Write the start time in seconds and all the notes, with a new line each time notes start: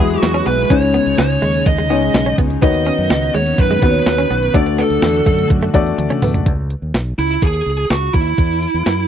Already playing: E3 F#3 G#3 E4 G#4 B4
0.00 E2 E4 F#4 G#4
0.11 closed hi-hat
0.21 E2 F#4, muted clean electric guitar stroke, snare, closed hi-hat
0.34 C#4, closed hi-hat
0.46 B1 B3 B4, closed hi-hat
0.59 closed hi-hat
0.70 C#2 C#3 G#3 C#4 D#4 C#5, kick, closed hi-hat
0.82 muted clean electric guitar stroke, closed hi-hat
0.94 B3, closed hi-hat
1.06 C#2, closed hi-hat
1.18 C#2 C#5, snare, closed hi-hat
1.30 closed hi-hat
1.42 D#2 G#3, closed hi-hat
1.54 closed hi-hat
1.66 D#2 D#5, muted clean electric guitar stroke, kick, closed hi-hat
1.78 G#3, closed hi-hat
1.90 C#2 G#3 B3 C#4 D#4 C#5, closed hi-hat
2.02 closed hi-hat
2.14 B1, muted clean electric guitar stroke, snare, closed hi-hat
2.26 C#4, closed hi-hat
2.38 C#2 B3, kick, closed hi-hat
2.50 closed hi-hat
2.62 D#2 D#3 B3 C#4 D#4 F#4 C#5 D#5, kick, closed hi-hat
2.74 muted clean electric guitar stroke, closed hi-hat
2.86 C#4, closed hi-hat
2.98 F#2, closed hi-hat
3.10 C#2, snare, closed hi-hat
3.22 closed hi-hat
3.34 D#2 G#3 C#5, closed hi-hat
3.46 closed hi-hat
3.58 F#2 B4, muted clean electric guitar stroke, kick, closed hi-hat
3.70 G#3, closed hi-hat
3.82 D#2 B3 D#4 F#4 B4, kick, closed hi-hat
3.89 C#5
3.94 closed hi-hat
4.06 D#2 B4, muted clean electric guitar stroke, snare, closed hi-hat
4.18 C#4, closed hi-hat
4.30 B1 B3, closed hi-hat
4.42 closed hi-hat
4.54 D2 D3 A3 D4 F#4 D5, kick, closed hi-hat
4.66 muted clean electric guitar stroke, closed hi-hat
4.78 B3 A4, closed hi-hat
4.90 D2, closed hi-hat
5.02 E2, snare, closed hi-hat
5.14 closed hi-hat
5.26 F#2 A3, kick, closed hi-hat
5.38 closed hi-hat
5.50 F#2, muted clean electric guitar stroke, kick, closed hi-hat
5.62 A3, closed hi-hat
5.74 E2 A3 D4 F#4 D5, kick, closed hi-hat
5.87 closed hi-hat
5.98 D2, muted clean electric guitar stroke, closed hi-hat, high tom
6.10 C#4, closed hi-hat, mid tom
6.22 D2 B3, mid tom, open hi-hat
6.34 C#2, closed hi-hat, floor tom
6.46 C#2, kick, closed hi-hat
6.70 closed hi-hat
6.82 D#2
6.94 B1, snare, closed hi-hat
7.18 C#2 E4, closed hi-hat
7.30 closed hi-hat
7.42 D#2 G#4, kick, closed hi-hat
7.66 C#2, closed hi-hat
7.90 C#2 F#4, snare, closed hi-hat
8.14 D#2 E4, kick, closed hi-hat
8.38 E2, kick, closed hi-hat
8.62 closed hi-hat
8.74 E2
8.86 F#2, snare, closed hi-hat